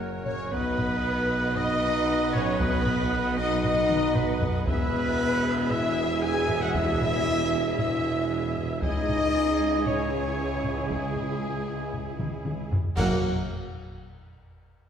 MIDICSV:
0, 0, Header, 1, 13, 480
1, 0, Start_track
1, 0, Tempo, 519031
1, 484, Time_signature, 4, 2, 24, 8
1, 13775, End_track
2, 0, Start_track
2, 0, Title_t, "Flute"
2, 0, Program_c, 0, 73
2, 239, Note_on_c, 0, 73, 89
2, 475, Note_on_c, 0, 71, 97
2, 489, Note_off_c, 0, 73, 0
2, 1431, Note_off_c, 0, 71, 0
2, 1437, Note_on_c, 0, 75, 109
2, 2154, Note_on_c, 0, 73, 98
2, 2168, Note_off_c, 0, 75, 0
2, 2407, Note_on_c, 0, 71, 98
2, 2421, Note_off_c, 0, 73, 0
2, 3122, Note_on_c, 0, 75, 109
2, 3136, Note_off_c, 0, 71, 0
2, 3351, Note_off_c, 0, 75, 0
2, 3357, Note_on_c, 0, 75, 114
2, 3838, Note_on_c, 0, 71, 97
2, 3852, Note_off_c, 0, 75, 0
2, 4080, Note_off_c, 0, 71, 0
2, 4319, Note_on_c, 0, 71, 109
2, 5283, Note_on_c, 0, 76, 108
2, 5297, Note_off_c, 0, 71, 0
2, 5746, Note_off_c, 0, 76, 0
2, 5752, Note_on_c, 0, 80, 109
2, 6117, Note_on_c, 0, 78, 104
2, 6130, Note_off_c, 0, 80, 0
2, 6224, Note_off_c, 0, 78, 0
2, 6230, Note_on_c, 0, 76, 105
2, 7174, Note_off_c, 0, 76, 0
2, 7201, Note_on_c, 0, 76, 94
2, 7905, Note_off_c, 0, 76, 0
2, 8157, Note_on_c, 0, 75, 108
2, 9080, Note_off_c, 0, 75, 0
2, 9114, Note_on_c, 0, 73, 77
2, 10077, Note_on_c, 0, 68, 69
2, 10091, Note_off_c, 0, 73, 0
2, 11517, Note_off_c, 0, 68, 0
2, 11995, Note_on_c, 0, 78, 84
2, 12264, Note_off_c, 0, 78, 0
2, 13775, End_track
3, 0, Start_track
3, 0, Title_t, "Violin section"
3, 0, Program_c, 1, 48
3, 228, Note_on_c, 1, 73, 90
3, 459, Note_off_c, 1, 73, 0
3, 469, Note_on_c, 1, 71, 109
3, 1436, Note_off_c, 1, 71, 0
3, 1447, Note_on_c, 1, 75, 115
3, 2150, Note_off_c, 1, 75, 0
3, 2161, Note_on_c, 1, 73, 104
3, 2397, Note_off_c, 1, 73, 0
3, 2398, Note_on_c, 1, 71, 106
3, 3114, Note_on_c, 1, 75, 112
3, 3120, Note_off_c, 1, 71, 0
3, 3346, Note_off_c, 1, 75, 0
3, 3357, Note_on_c, 1, 75, 116
3, 3829, Note_off_c, 1, 75, 0
3, 3849, Note_on_c, 1, 71, 97
3, 4085, Note_off_c, 1, 71, 0
3, 4316, Note_on_c, 1, 71, 122
3, 5241, Note_off_c, 1, 71, 0
3, 5272, Note_on_c, 1, 76, 115
3, 5746, Note_off_c, 1, 76, 0
3, 5751, Note_on_c, 1, 80, 116
3, 6108, Note_off_c, 1, 80, 0
3, 6111, Note_on_c, 1, 78, 95
3, 6233, Note_off_c, 1, 78, 0
3, 6235, Note_on_c, 1, 76, 112
3, 7183, Note_off_c, 1, 76, 0
3, 7194, Note_on_c, 1, 76, 101
3, 7901, Note_off_c, 1, 76, 0
3, 8154, Note_on_c, 1, 75, 123
3, 9078, Note_off_c, 1, 75, 0
3, 9119, Note_on_c, 1, 73, 83
3, 10059, Note_off_c, 1, 73, 0
3, 10071, Note_on_c, 1, 68, 87
3, 11485, Note_off_c, 1, 68, 0
3, 11996, Note_on_c, 1, 78, 98
3, 12264, Note_off_c, 1, 78, 0
3, 13775, End_track
4, 0, Start_track
4, 0, Title_t, "Violin section"
4, 0, Program_c, 2, 48
4, 243, Note_on_c, 2, 73, 94
4, 466, Note_off_c, 2, 73, 0
4, 476, Note_on_c, 2, 71, 101
4, 1420, Note_off_c, 2, 71, 0
4, 1441, Note_on_c, 2, 75, 110
4, 2157, Note_on_c, 2, 73, 96
4, 2161, Note_off_c, 2, 75, 0
4, 2400, Note_off_c, 2, 73, 0
4, 2402, Note_on_c, 2, 71, 102
4, 3108, Note_off_c, 2, 71, 0
4, 3124, Note_on_c, 2, 75, 105
4, 3343, Note_off_c, 2, 75, 0
4, 3354, Note_on_c, 2, 75, 107
4, 3828, Note_off_c, 2, 75, 0
4, 3831, Note_on_c, 2, 71, 90
4, 4076, Note_off_c, 2, 71, 0
4, 4312, Note_on_c, 2, 71, 118
4, 5239, Note_off_c, 2, 71, 0
4, 5273, Note_on_c, 2, 76, 103
4, 5749, Note_on_c, 2, 80, 109
4, 5756, Note_off_c, 2, 76, 0
4, 6113, Note_on_c, 2, 78, 91
4, 6114, Note_off_c, 2, 80, 0
4, 6234, Note_on_c, 2, 76, 112
4, 6236, Note_off_c, 2, 78, 0
4, 7176, Note_off_c, 2, 76, 0
4, 7199, Note_on_c, 2, 76, 95
4, 7904, Note_off_c, 2, 76, 0
4, 8169, Note_on_c, 2, 75, 106
4, 9086, Note_off_c, 2, 75, 0
4, 9120, Note_on_c, 2, 73, 81
4, 10077, Note_on_c, 2, 68, 78
4, 10078, Note_off_c, 2, 73, 0
4, 11488, Note_off_c, 2, 68, 0
4, 11991, Note_on_c, 2, 78, 92
4, 12262, Note_off_c, 2, 78, 0
4, 13775, End_track
5, 0, Start_track
5, 0, Title_t, "Trumpet"
5, 0, Program_c, 3, 56
5, 240, Note_on_c, 3, 73, 89
5, 477, Note_on_c, 3, 71, 106
5, 491, Note_off_c, 3, 73, 0
5, 1439, Note_on_c, 3, 75, 117
5, 1452, Note_off_c, 3, 71, 0
5, 2156, Note_on_c, 3, 73, 99
5, 2170, Note_off_c, 3, 75, 0
5, 2394, Note_off_c, 3, 73, 0
5, 2400, Note_on_c, 3, 71, 116
5, 3116, Note_on_c, 3, 75, 100
5, 3130, Note_off_c, 3, 71, 0
5, 3351, Note_off_c, 3, 75, 0
5, 3356, Note_on_c, 3, 75, 107
5, 3831, Note_on_c, 3, 71, 90
5, 3845, Note_off_c, 3, 75, 0
5, 4076, Note_off_c, 3, 71, 0
5, 4314, Note_on_c, 3, 71, 117
5, 5278, Note_on_c, 3, 76, 108
5, 5292, Note_off_c, 3, 71, 0
5, 5754, Note_on_c, 3, 80, 114
5, 5768, Note_off_c, 3, 76, 0
5, 6115, Note_on_c, 3, 78, 104
5, 6128, Note_off_c, 3, 80, 0
5, 6233, Note_off_c, 3, 78, 0
5, 6238, Note_on_c, 3, 76, 125
5, 7179, Note_off_c, 3, 76, 0
5, 7201, Note_on_c, 3, 76, 94
5, 7905, Note_off_c, 3, 76, 0
5, 8147, Note_on_c, 3, 75, 126
5, 9114, Note_on_c, 3, 73, 93
5, 9128, Note_off_c, 3, 75, 0
5, 10063, Note_off_c, 3, 73, 0
5, 10069, Note_on_c, 3, 68, 79
5, 11484, Note_off_c, 3, 68, 0
5, 11993, Note_on_c, 3, 58, 101
5, 12195, Note_off_c, 3, 58, 0
5, 13775, End_track
6, 0, Start_track
6, 0, Title_t, "Viola section"
6, 0, Program_c, 4, 48
6, 0, Note_on_c, 4, 70, 76
6, 0, Note_on_c, 4, 73, 74
6, 454, Note_off_c, 4, 70, 0
6, 454, Note_off_c, 4, 73, 0
6, 492, Note_on_c, 4, 75, 92
6, 493, Note_on_c, 4, 71, 94
6, 4288, Note_off_c, 4, 75, 0
6, 4289, Note_off_c, 4, 71, 0
6, 4320, Note_on_c, 4, 76, 101
6, 4322, Note_on_c, 4, 68, 94
6, 8120, Note_off_c, 4, 76, 0
6, 8148, Note_off_c, 4, 68, 0
6, 8158, Note_on_c, 4, 64, 84
6, 8159, Note_on_c, 4, 68, 88
6, 11776, Note_off_c, 4, 64, 0
6, 11777, Note_off_c, 4, 68, 0
6, 11997, Note_on_c, 4, 58, 96
6, 12003, Note_on_c, 4, 70, 95
6, 12265, Note_off_c, 4, 58, 0
6, 12268, Note_off_c, 4, 70, 0
6, 13775, End_track
7, 0, Start_track
7, 0, Title_t, "Woodwind section"
7, 0, Program_c, 5, 71
7, 0, Note_on_c, 5, 61, 89
7, 0, Note_on_c, 5, 66, 87
7, 0, Note_on_c, 5, 70, 87
7, 0, Note_on_c, 5, 78, 82
7, 443, Note_off_c, 5, 70, 0
7, 444, Note_off_c, 5, 61, 0
7, 444, Note_off_c, 5, 66, 0
7, 444, Note_off_c, 5, 78, 0
7, 475, Note_on_c, 5, 71, 107
7, 479, Note_on_c, 5, 66, 101
7, 479, Note_on_c, 5, 78, 102
7, 481, Note_on_c, 5, 63, 97
7, 4282, Note_off_c, 5, 66, 0
7, 4282, Note_off_c, 5, 78, 0
7, 4303, Note_off_c, 5, 71, 0
7, 4312, Note_on_c, 5, 68, 114
7, 4314, Note_on_c, 5, 71, 117
7, 4315, Note_on_c, 5, 76, 117
7, 4318, Note_on_c, 5, 64, 116
7, 4320, Note_off_c, 5, 63, 0
7, 8117, Note_off_c, 5, 71, 0
7, 8144, Note_off_c, 5, 68, 0
7, 8151, Note_on_c, 5, 80, 103
7, 8152, Note_on_c, 5, 73, 93
7, 8155, Note_off_c, 5, 76, 0
7, 8156, Note_off_c, 5, 64, 0
7, 8156, Note_on_c, 5, 52, 101
7, 8156, Note_on_c, 5, 68, 98
7, 11719, Note_off_c, 5, 52, 0
7, 11719, Note_off_c, 5, 68, 0
7, 11754, Note_off_c, 5, 73, 0
7, 11754, Note_off_c, 5, 80, 0
7, 11983, Note_on_c, 5, 73, 105
7, 11988, Note_on_c, 5, 66, 111
7, 11989, Note_on_c, 5, 70, 114
7, 11989, Note_on_c, 5, 78, 109
7, 12189, Note_off_c, 5, 73, 0
7, 12192, Note_off_c, 5, 66, 0
7, 12193, Note_off_c, 5, 70, 0
7, 12193, Note_off_c, 5, 78, 0
7, 13775, End_track
8, 0, Start_track
8, 0, Title_t, "French horn section"
8, 0, Program_c, 6, 60
8, 240, Note_on_c, 6, 61, 104
8, 465, Note_off_c, 6, 61, 0
8, 480, Note_on_c, 6, 59, 124
8, 1422, Note_off_c, 6, 59, 0
8, 1432, Note_on_c, 6, 63, 116
8, 2154, Note_on_c, 6, 61, 111
8, 2157, Note_off_c, 6, 63, 0
8, 2398, Note_off_c, 6, 61, 0
8, 2398, Note_on_c, 6, 59, 127
8, 3105, Note_off_c, 6, 59, 0
8, 3122, Note_on_c, 6, 63, 127
8, 3353, Note_off_c, 6, 63, 0
8, 3364, Note_on_c, 6, 63, 126
8, 3833, Note_off_c, 6, 63, 0
8, 3844, Note_on_c, 6, 59, 98
8, 4078, Note_off_c, 6, 59, 0
8, 4334, Note_on_c, 6, 59, 127
8, 5249, Note_off_c, 6, 59, 0
8, 5287, Note_on_c, 6, 64, 126
8, 5763, Note_off_c, 6, 64, 0
8, 5767, Note_on_c, 6, 68, 123
8, 6123, Note_off_c, 6, 68, 0
8, 6136, Note_on_c, 6, 66, 104
8, 6237, Note_on_c, 6, 64, 119
8, 6245, Note_off_c, 6, 66, 0
8, 7178, Note_off_c, 6, 64, 0
8, 7199, Note_on_c, 6, 64, 112
8, 7904, Note_off_c, 6, 64, 0
8, 8162, Note_on_c, 6, 63, 115
8, 9082, Note_off_c, 6, 63, 0
8, 9121, Note_on_c, 6, 61, 99
8, 10079, Note_off_c, 6, 61, 0
8, 10086, Note_on_c, 6, 56, 88
8, 11493, Note_off_c, 6, 56, 0
8, 12003, Note_on_c, 6, 66, 106
8, 12202, Note_off_c, 6, 66, 0
8, 13775, End_track
9, 0, Start_track
9, 0, Title_t, "Cello section"
9, 0, Program_c, 7, 48
9, 0, Note_on_c, 7, 42, 83
9, 449, Note_off_c, 7, 42, 0
9, 479, Note_on_c, 7, 47, 94
9, 4319, Note_off_c, 7, 47, 0
9, 4329, Note_on_c, 7, 40, 112
9, 8162, Note_off_c, 7, 40, 0
9, 8171, Note_on_c, 7, 37, 91
9, 11820, Note_off_c, 7, 37, 0
9, 11997, Note_on_c, 7, 42, 114
9, 12265, Note_off_c, 7, 42, 0
9, 13775, End_track
10, 0, Start_track
10, 0, Title_t, "Double bass section"
10, 0, Program_c, 8, 48
10, 0, Note_on_c, 8, 30, 82
10, 449, Note_off_c, 8, 30, 0
10, 490, Note_on_c, 8, 35, 92
10, 4324, Note_off_c, 8, 35, 0
10, 4326, Note_on_c, 8, 28, 106
10, 8159, Note_on_c, 8, 37, 94
10, 8160, Note_off_c, 8, 28, 0
10, 11814, Note_off_c, 8, 37, 0
10, 12001, Note_on_c, 8, 30, 105
10, 12267, Note_off_c, 8, 30, 0
10, 13775, End_track
11, 0, Start_track
11, 0, Title_t, "Tuba"
11, 0, Program_c, 10, 58
11, 0, Note_on_c, 10, 30, 77
11, 482, Note_on_c, 10, 35, 88
11, 496, Note_off_c, 10, 30, 0
11, 4318, Note_on_c, 10, 28, 95
11, 4332, Note_off_c, 10, 35, 0
11, 8161, Note_on_c, 10, 37, 90
11, 8175, Note_off_c, 10, 28, 0
11, 11815, Note_off_c, 10, 37, 0
11, 11999, Note_on_c, 10, 30, 107
11, 12200, Note_off_c, 10, 30, 0
11, 13775, End_track
12, 0, Start_track
12, 0, Title_t, "Taiko and cinematic ensemble drums"
12, 239, Note_on_c, 9, 45, 57
12, 332, Note_off_c, 9, 45, 0
12, 481, Note_on_c, 9, 41, 108
12, 574, Note_off_c, 9, 41, 0
12, 724, Note_on_c, 9, 45, 55
12, 816, Note_off_c, 9, 45, 0
12, 1443, Note_on_c, 9, 45, 60
12, 1535, Note_off_c, 9, 45, 0
12, 2165, Note_on_c, 9, 45, 61
12, 2258, Note_off_c, 9, 45, 0
12, 2402, Note_on_c, 9, 41, 106
12, 2494, Note_off_c, 9, 41, 0
12, 2643, Note_on_c, 9, 45, 59
12, 2735, Note_off_c, 9, 45, 0
12, 3362, Note_on_c, 9, 45, 64
12, 3454, Note_off_c, 9, 45, 0
12, 3603, Note_on_c, 9, 47, 99
12, 3695, Note_off_c, 9, 47, 0
12, 3840, Note_on_c, 9, 45, 97
12, 3933, Note_off_c, 9, 45, 0
12, 4079, Note_on_c, 9, 43, 107
12, 4171, Note_off_c, 9, 43, 0
12, 4320, Note_on_c, 9, 41, 105
12, 4412, Note_off_c, 9, 41, 0
12, 4559, Note_on_c, 9, 45, 60
12, 4652, Note_off_c, 9, 45, 0
12, 5277, Note_on_c, 9, 45, 65
12, 5369, Note_off_c, 9, 45, 0
12, 5997, Note_on_c, 9, 45, 59
12, 6089, Note_off_c, 9, 45, 0
12, 6238, Note_on_c, 9, 41, 109
12, 6331, Note_off_c, 9, 41, 0
12, 6480, Note_on_c, 9, 45, 59
12, 6573, Note_off_c, 9, 45, 0
12, 7202, Note_on_c, 9, 45, 63
12, 7294, Note_off_c, 9, 45, 0
12, 7921, Note_on_c, 9, 45, 63
12, 8013, Note_off_c, 9, 45, 0
12, 8163, Note_on_c, 9, 41, 110
12, 8255, Note_off_c, 9, 41, 0
12, 8403, Note_on_c, 9, 45, 58
12, 8496, Note_off_c, 9, 45, 0
12, 9118, Note_on_c, 9, 45, 68
12, 9210, Note_off_c, 9, 45, 0
12, 9835, Note_on_c, 9, 45, 54
12, 9928, Note_off_c, 9, 45, 0
12, 10076, Note_on_c, 9, 41, 100
12, 10169, Note_off_c, 9, 41, 0
12, 10319, Note_on_c, 9, 45, 54
12, 10412, Note_off_c, 9, 45, 0
12, 11037, Note_on_c, 9, 45, 64
12, 11129, Note_off_c, 9, 45, 0
12, 11277, Note_on_c, 9, 47, 86
12, 11369, Note_off_c, 9, 47, 0
12, 11517, Note_on_c, 9, 47, 91
12, 11609, Note_off_c, 9, 47, 0
12, 11760, Note_on_c, 9, 43, 100
12, 11853, Note_off_c, 9, 43, 0
12, 11998, Note_on_c, 9, 43, 92
12, 12090, Note_off_c, 9, 43, 0
12, 13775, End_track
13, 0, Start_track
13, 0, Title_t, "Drums"
13, 11994, Note_on_c, 9, 35, 83
13, 11994, Note_on_c, 9, 49, 77
13, 12087, Note_off_c, 9, 35, 0
13, 12087, Note_off_c, 9, 49, 0
13, 13775, End_track
0, 0, End_of_file